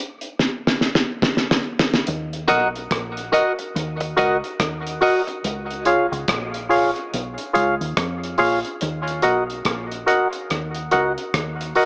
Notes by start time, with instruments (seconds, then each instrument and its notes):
0.21 closed hi-hat
0.39 snare
0.67 snare
0.81 snare
0.95 snare
1.22 kick, snare
1.37 snare
1.51 snare
1.79 snare
1.94 snare
2.07 fingered electric bass D#2, closed hi-hat
2.33 closed hi-hat
2.48 fingered electric bass B1, synth stab F#4 A#4 D#5 F#5, clean electric guitar F#4 A#4 D#5, closed hi-hat
2.76 closed hi-hat
2.91 fingered electric bass A#1, kick, cross-stick, closed hi-hat
3.17 closed hi-hat
3.32 synth stab F#4 A#4 D#5 F#5, clean electric guitar F#4 A#4 D#5, closed hi-hat
3.59 muted clean electric guitar stroke, closed hi-hat
3.76 fingered electric bass D#2, closed hi-hat
4.00 muted clean electric guitar stroke, closed hi-hat
4.17 fingered electric bass C#2, synth stab F#4 A#4 D#5 F#5, clean electric guitar F#4 A#4 D#5, closed hi-hat
4.44 closed hi-hat
4.60 fingered electric bass D#2, kick, cross-stick, closed hi-hat
4.87 closed hi-hat
5.01 synth stab F#4 A#4 D#5 F#5, clean electric guitar F#4 A#4 D#5, open hi-hat
5.27 muted clean electric guitar stroke, closed hi-hat
5.44 fingered electric bass C#2, closed hi-hat
5.71 closed hi-hat
5.85 synth stab F4 G#4 C#5 F5, closed hi-hat
6.12 fingered electric bass C#2, closed hi-hat
6.28 fingered electric bass A#1, kick, cross-stick, closed hi-hat
6.54 closed hi-hat
6.69 synth stab F4 G#4 C#5 F5, open hi-hat
6.96 closed hi-hat
7.14 fingered electric bass B1, closed hi-hat
7.38 closed hi-hat
7.53 fingered electric bass C#2, synth stab F4 G#4 C#5 F5, closed hi-hat
7.81 fingered electric bass D#2, closed hi-hat
7.97 fingered electric bass F2, kick, cross-stick, closed hi-hat
8.24 closed hi-hat
8.38 fingered electric bass A#1, synth stab F4 G#4 C#5 F5, open hi-hat
8.65 closed hi-hat
8.81 fingered electric bass D#2, closed hi-hat
9.08 closed hi-hat
9.22 fingered electric bass B1, synth stab F#4 A#4 D#5 F#5, closed hi-hat
9.50 closed hi-hat
9.65 fingered electric bass A#1, kick, cross-stick, closed hi-hat
9.92 closed hi-hat
10.06 synth stab F#4 A#4 D#5 F#5, closed hi-hat
10.33 closed hi-hat
10.50 fingered electric bass D#2, cross-stick, closed hi-hat
10.75 closed hi-hat
10.91 fingered electric bass C#2, synth stab F#4 A#4 D#5 F#5, closed hi-hat
11.18 closed hi-hat
11.34 fingered electric bass D#2, kick, cross-stick, closed hi-hat
11.61 closed hi-hat
11.75 synth stab F#4 A#4 D#5 F#5, open hi-hat